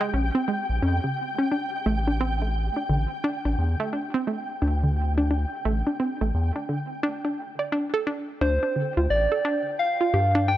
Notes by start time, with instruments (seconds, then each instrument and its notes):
Already playing: synth texture G5
0.01 synth arpeggio sound G#3
0.14 analog synth bass A#1, synth arpeggio sound C#4
0.35 synth arpeggio sound C4
0.48 synth arpeggio sound G#3
0.70 analog synth bass A#1
0.82 analog synth bass F2, synth arpeggio sound C#4
1.04 synth arpeggio sound C#3
1.38 synth arpeggio sound C#4
1.52 synth arpeggio sound D4
1.86 analog synth bass A1, synth arpeggio sound A3
2.07 synth arpeggio sound D4
2.21 synth arpeggio sound C4
2.42 synth arpeggio sound A3
2.76 synth arpeggio sound D4
2.89 analog synth bass A1, synth arpeggio sound D3
3.24 synth arpeggio sound D4
3.45 analog synth bass A1, synth arpeggio sound D4
3.58 analog synth bass E2
3.80 synth arpeggio sound A3
3.93 synth arpeggio sound D4
4.14 synth arpeggio sound C4
4.27 synth arpeggio sound A3
4.62 analog synth bass D2, synth arpeggio sound D4
4.83 synth arpeggio sound D3
5.18 synth arpeggio sound D4
5.31 synth arpeggio sound D4
5.65 analog synth bass A1, synth arpeggio sound A3
5.87 synth arpeggio sound D4
6.00 synth arpeggio sound C4
6.21 analog synth bass A1, synth arpeggio sound A3
6.34 analog synth bass E2
6.56 synth arpeggio sound D4
6.69 synth arpeggio sound D3
7.03 synth arpeggio sound D4
7.25 synth arpeggio sound D4
7.59 synth arpeggio sound D5
7.72 synth arpeggio sound D4
7.94 synth arpeggio sound A4
8.07 synth arpeggio sound D4
8.41 analog synth bass D2, synth arpeggio sound D4, soft synth lead C5, synth texture G5
8.63 synth arpeggio sound D4
8.76 synth arpeggio sound D3
8.97 analog synth bass D2, synth arpeggio sound F4
9.10 analog synth bass A1, soft synth lead D5
9.32 synth arpeggio sound A4
9.45 synth arpeggio sound D4
9.79 soft synth lead F5
10.01 synth arpeggio sound F4
10.14 analog synth bass G2, synth arpeggio sound G4
10.35 synth arpeggio sound D4
10.48 synth arpeggio sound D4, soft synth lead G5